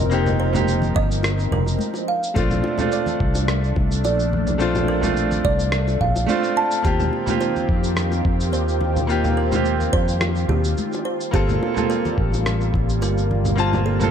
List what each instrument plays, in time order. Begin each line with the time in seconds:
Already playing: fingered electric bass F1, analog synth pad F3 C4 D#4 A#4, grand piano A#3 C4 D#4 G4
0.09 grand piano A#3 C4 D#4 G4, shaker
0.26 high bongo, high conga, low conga, shaker
0.40 kalimba C5
0.53 grand piano A#3 C4 D#4 G4, high bongo, high conga, low conga, shaker
0.68 shaker
0.82 low conga, shaker
0.95 fingered electric bass G1, kalimba D#5, kick, high bongo
1.11 shaker
1.23 cross-stick, high bongo, shaker
1.39 shaker
1.51 fingered electric bass F1, kalimba A#4, low conga
1.66 high bongo, shaker
1.79 high conga, shaker
1.94 high bongo, shaker
2.08 analog synth pad A3 D4, kalimba F5
2.23 shaker
2.34 fingered electric bass A#1, grand piano A3 C4 D4 F4, kalimba A4, kick, high bongo, shaker
2.50 high conga, low conga, shaker
2.64 high bongo
2.78 grand piano A3 C4 D4 F4, high conga, low conga, shaker
2.92 kalimba D5, shaker
3.06 high bongo, low conga, shaker
3.20 fingered electric bass C2, kick
3.35 high bongo, shaker
3.48 cross-stick, shaker
3.64 shaker
3.76 fingered electric bass C2, kick, high bongo
3.92 shaker
4.04 fingered electric bass A#1, kalimba D5, high bongo, shaker
4.19 shaker
4.33 low conga
4.47 high bongo, low conga, shaker
4.58 grand piano A3 C4 D4 F4, shaker
4.75 high bongo, high conga, low conga, shaker
4.88 kalimba A#4
5.01 grand piano A3 C4 D4 F4, high conga, low conga, shaker
5.17 high bongo, shaker
5.31 low conga, shaker
5.45 fingered electric bass C2, kalimba D5, kick, high bongo
5.59 shaker
5.72 cross-stick, shaker
5.88 high bongo, shaker
6.01 fingered electric bass A#1, kalimba F5, kick, low conga
6.16 high bongo, shaker
6.26 grand piano A3 C4 D4 F4, high conga, shaker
6.43 shaker
6.56 kalimba A5, high bongo
6.71 shaker
6.82 fingered electric bass D#2, analog synth pad D#3 C4 F4 G4, grand piano A#3 C4 F4 G4, kalimba G4, kick, shaker
7.00 high conga, low conga, shaker
7.13 high bongo
7.26 grand piano A#3 C4 F4 G4, high conga, low conga, shaker
7.41 kalimba C5, high bongo, shaker
7.56 low conga, shaker
7.69 fingered electric bass F2, kick
7.83 high bongo, shaker
7.97 cross-stick, shaker
8.12 high bongo, shaker
8.25 fingered electric bass F2, kick
8.40 shaker
8.52 fingered electric bass D#2, kalimba C5, high bongo, shaker
8.68 shaker
8.81 high bongo, low conga
8.96 low conga, shaker
9.07 grand piano A#3 C4 F4 G4, shaker
9.24 high bongo, high conga, low conga, shaker
9.37 kalimba A#4
9.52 grand piano A#3 C4 F4 G4, high bongo, high conga, low conga, shaker
9.65 shaker
9.80 low conga, shaker
9.93 fingered electric bass F2, kalimba C5, kick, high bongo
10.08 shaker
10.21 cross-stick, high bongo, shaker
10.36 shaker
10.49 fingered electric bass D#2, kalimba G4, low conga
10.64 high bongo, shaker
10.77 high conga, shaker
10.93 high bongo, shaker
11.05 analog synth pad G3 A#3, kalimba C5
11.21 shaker
11.31 fingered electric bass G1, grand piano A#3 C4 F4, kalimba G4, kick, high bongo, shaker
11.35 grand piano A4
11.49 high conga, low conga, shaker
11.63 high bongo
11.74 grand piano A#3 C4 F4 A4, high conga, low conga, shaker
11.90 kalimba A#4, shaker
12.05 high bongo, low conga, shaker
12.18 fingered electric bass A1, kick
12.33 high bongo, shaker
12.46 cross-stick, shaker
12.61 shaker
12.74 fingered electric bass A1, kick, high bongo
12.89 shaker
13.02 fingered electric bass G1, kalimba A#4, high bongo, shaker
13.18 shaker
13.31 low conga
13.45 high bongo, low conga, shaker
13.55 grand piano A#3 C4 F4 A5, shaker
13.73 high bongo, high conga, low conga, shaker
13.86 kalimba A4
13.99 grand piano A#3 C4 F4 A4, high conga, low conga, shaker